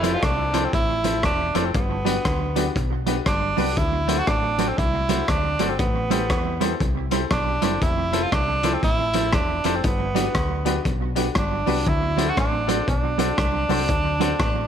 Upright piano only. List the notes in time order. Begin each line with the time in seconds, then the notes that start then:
0.02 E4 F4 A4 C5
0.53 E4 F4 A4 C5
1.04 E4 F4 A4 C5
1.54 E4 F4 A4 C5
2.05 D4 F#4 G4 B4
2.56 D4 F#4 G4 B4
3.06 D4 F#4 G4 B4
3.57 D4 F#4 G4 B4
4.08 D4 F#4 A4 C5
4.58 D4 F#4 A4 C5
5.09 D4 F#4 A4 C5
5.59 D4 F#4 A4 C5
6.10 E4 G4 A4 C5
6.60 E4 G4 A4 C5
7.11 E4 G4 A4 C5
7.62 E4 G4 A4 C5
8.12 E4 F4 A4 C5
8.63 E4 F4 A4 C5
9.13 E4 F4 A4 C5
9.64 E4 F4 A4 C5
10.15 D4 F#4 G4 B4
10.65 D4 F#4 G4 B4
11.15 D4 F#4 G4 B4
11.66 D4 F#4 G4 B4
12.17 D4 F#4 A4 C5
12.67 D4 F#4 A4 C5
13.18 D4 F#4 A4 C5
13.69 D4 F#4 A4 C5
14.20 D4 F#4 A4 C5